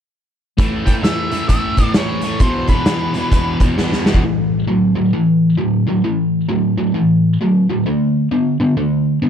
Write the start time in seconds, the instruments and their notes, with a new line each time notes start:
0.57 distorted electric guitar A2 E3 A3, kick, closed hi-hat
0.85 distorted electric guitar A2 E3 A3, lead electric guitar G5, kick, closed hi-hat
1.03 distorted electric guitar A2 E3 A3, lead electric guitar E5, snare, closed hi-hat
1.31 distorted electric guitar A2 E3 A3, closed hi-hat
1.49 distorted electric guitar A2 E3 A3, lead electric guitar E5, kick, closed hi-hat
1.77 distorted electric guitar A2 E3 A3, kick, closed hi-hat
1.94 distorted electric guitar A2 E3 A3, lead electric guitar C#5, snare, closed hi-hat
2.21 distorted electric guitar A2 E3 A3, closed hi-hat
2.39 distorted electric guitar E2 B2 E3, lead electric guitar C5, kick, closed hi-hat
2.68 distorted electric guitar E2 B2, lead electric guitar B4, kick, closed hi-hat
2.72 distorted electric guitar E3
2.86 distorted electric guitar E2 B2 E3, snare, closed hi-hat
3.14 distorted electric guitar E2 B2 E3, closed hi-hat
3.31 distorted electric guitar E2 B2 E3, kick, closed hi-hat
3.60 distorted electric guitar E2 B2 E3, kick, closed hi-hat
3.78 distorted electric guitar E2 B2 E3, snare
3.92 snare
4.05 distorted electric guitar E2 B2 E3, snare
4.14 kick
4.23 distorted electric guitar A2 E3
4.67 distorted electric guitar A2 F#3
4.96 distorted electric guitar A2 F#3
5.13 distorted electric guitar A2 E3
5.57 distorted electric guitar A2 F#3
5.87 distorted electric guitar A2 F#3
6.04 distorted electric guitar A2 E3
6.49 distorted electric guitar A2 F#3
6.78 distorted electric guitar A2 F#3
6.94 distorted electric guitar A2 E3
7.41 distorted electric guitar A2 F#3
7.69 distorted electric guitar A2 F#3
7.86 distorted electric guitar D3 A3
8.31 distorted electric guitar D3 B3
8.60 distorted electric guitar D3 B3
8.77 distorted electric guitar D3 A3
9.22 distorted electric guitar D3 B3